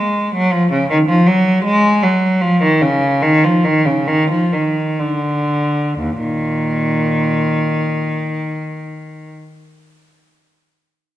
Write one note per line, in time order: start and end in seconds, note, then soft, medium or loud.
0.00 0.34 G#3 medium
0.35 0.53 F#3 medium
0.52 0.71 F3 medium
0.72 0.89 C#3 medium
0.90 0.97 D#3 loud
1.09 1.27 F3 medium
1.27 1.65 F#3 loud
1.65 2.02 G#3 loud
2.03 2.42 F#3 medium
2.41 2.62 F3 loud
2.63 2.82 D#3 medium
2.82 3.23 C#3 medium
3.22 3.43 D#3 loud
3.44 3.65 F3 medium
3.65 3.86 D#3 medium
3.85 4.07 C#3 medium
4.07 4.30 D#3 loud
4.30 4.52 F3 medium
4.52 4.99 D#3 medium
4.99 5.99 D3 medium
5.98 6.20 D#2 medium
6.19 8.10 A#2 medium
6.19 9.31 D#3 medium